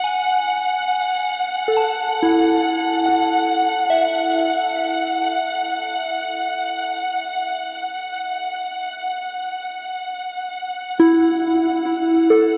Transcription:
Already playing: F#5
0.04 G#5
1.68 A4
1.77 A5
2.23 E4
3.06 F#5
3.90 E5
11.00 E4
12.30 A4

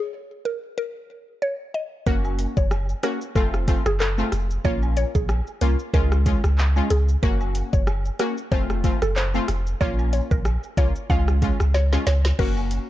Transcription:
0.45 A#4
0.78 A#4
1.42 C#5
1.74 D#5
2.06 F#1 A#3 C#4 F#4 A#4, kick, shaker
2.25 high woodblock, shaker
2.39 closed hi-hat, cabasa, shaker
2.57 F#1 C#5, kick, shaker
2.71 cross-stick, high woodblock, shaker
2.89 shaker
3.03 A#3 C#4 F#4 A#4, cross-stick, closed hi-hat, cabasa, shaker
3.21 shaker
3.35 F1 A3 C4 F4 A4, kick, high woodblock, shaker
3.54 cross-stick, shaker
3.68 A3 C4 F4, kick, closed hi-hat, cabasa, high woodblock, shaker
3.86 F#1 G#4, cross-stick, shaker
4.00 A4, clap, shaker
4.18 A3 C4 F4, high woodblock, shaker
4.32 F1, cross-stick, closed hi-hat, cabasa, shaker
4.50 shaker
4.64 A#1 A#3 C#4 F4 C#5, kick, shaker
4.82 high woodblock, shaker
4.97 C#5, closed hi-hat, cabasa, shaker
5.15 A#1 G#4, kick, shaker
5.29 cross-stick, high woodblock, shaker
5.47 shaker
5.61 C2 A#3 C#4 F4 A#4, closed hi-hat, cabasa, shaker
5.79 shaker
5.94 C#2 G#3 C#4 F4 A#4, kick, high woodblock, shaker
6.12 cross-stick, shaker
6.26 G#3 C#4 F4, kick, closed hi-hat, cabasa, high woodblock, shaker
6.44 C#2, cross-stick, shaker
6.58 clap, shaker
6.76 G#3 C#4 F4, high woodblock, shaker
6.90 C#2 G#4, closed hi-hat, cabasa, shaker
7.09 shaker
7.23 F#1 A#3 C#4 F#4 A#4, kick, shaker
7.41 high woodblock, shaker
7.55 closed hi-hat, cabasa, shaker
7.73 F#1 C#5, kick, shaker
7.87 cross-stick, high woodblock, shaker
8.05 shaker
8.19 A#3 C#4 F#4 A#4, cross-stick, closed hi-hat, cabasa, shaker
8.38 shaker
8.52 F1 A3 C4 F4 C5, kick, high woodblock, shaker
8.70 cross-stick, shaker
8.84 A3 C4 F4, kick, closed hi-hat, cabasa, high woodblock, shaker
9.02 F#1 A4, cross-stick, shaker
9.16 C5, clap, shaker
9.34 A3 C4 F4, high woodblock, shaker
9.48 F1, cross-stick, closed hi-hat, cabasa, shaker
9.67 shaker
9.81 A#1 A#3 C#4 F4 C#5, kick, shaker
9.99 high woodblock, shaker
10.13 C#5, closed hi-hat, cabasa, shaker
10.31 A#1 A#4, kick, shaker
10.45 cross-stick, high woodblock, shaker
10.63 shaker
10.77 C2 A#3 C#4 F4 C#5, kick, closed hi-hat, cabasa, shaker
10.96 shaker
11.10 C#2 G#3 C#4 F4 F5, kick, high woodblock, shaker
11.28 cross-stick, shaker
11.42 G#3 C#4 F4, kick, closed hi-hat, cabasa, high woodblock, shaker
11.60 C#2, cross-stick, shaker
11.74 C#5, snare, shaker
11.92 G#3 C#4 F4, snare, high woodblock, shaker
12.07 C#2 C#5, snare, closed hi-hat, cabasa, shaker
12.25 snare, shaker
12.39 F#1 A#3 C#4 F#4 A#4, kick, crash
12.57 high woodblock, shaker
12.71 closed hi-hat, cabasa, shaker

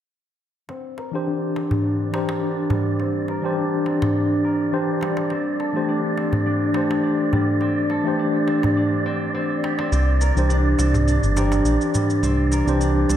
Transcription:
0.69 C4 D5, darbuka ka
0.98 A#4, darbuka ka
1.12 E3 D4 G4 C5
1.27 D4
1.56 C4, darbuka ka
1.71 darbuka dum
1.85 D4
2.11 E3 D4 G4 A#4, darbuka tek
2.15 C5
2.29 darbuka tek
2.43 D4
2.70 G3, darbuka dum
3.00 C4, darbuka ka
3.28 A#4, darbuka ka
3.42 E3 D4 G4 C5
3.58 D4
3.86 C4, darbuka ka
4.02 darbuka tek, darbuka dum
4.15 D4
4.44 A#4
4.72 E3 D4 G4 C5
5.01 G3, darbuka ka, darbuka tek
5.17 darbuka tek
5.30 C4, darbuka ka
5.60 A4, darbuka ka
5.73 E3 A3 D4 G4
5.77 C5
5.88 D4
6.17 C4, darbuka ka
6.33 darbuka dum
6.46 D4
6.73 E3 A3 D4 G4 A4 C5, darbuka tek
6.91 darbuka tek
7.04 D4
7.33 G3, darbuka dum
7.61 C4, darbuka ka
7.90 A4, darbuka ka
8.04 E3 A3 D4 G4 C5
8.19 D4
8.48 C4, darbuka ka
8.63 darbuka tek, darbuka dum
8.77 D4
9.06 C4
9.34 C4
9.63 G4, darbuka ka, darbuka tek
9.79 C4, darbuka tek
9.92 C2 C4, darbuka ka, shaker
10.21 A#4, darbuka ka, shaker
10.35 C2 E3 D4 G4 C5, shaker
10.50 D4, shaker
10.78 C2 C4, darbuka ka, shaker
10.94 darbuka dum, shaker
11.07 D4, shaker
11.23 G1, shaker
11.35 E3 D4 G4 A#4 C5, darbuka tek, shaker
11.52 darbuka tek, shaker
11.65 A#1 D4, shaker
11.81 shaker
11.94 G3, darbuka dum, shaker
12.10 shaker
12.23 C2 C4, darbuka ka, shaker
12.52 A#4, darbuka ka, shaker
12.65 C2 E3 D4 G4 C5, shaker
12.81 D4, shaker
13.09 C2 C4, darbuka ka, shaker

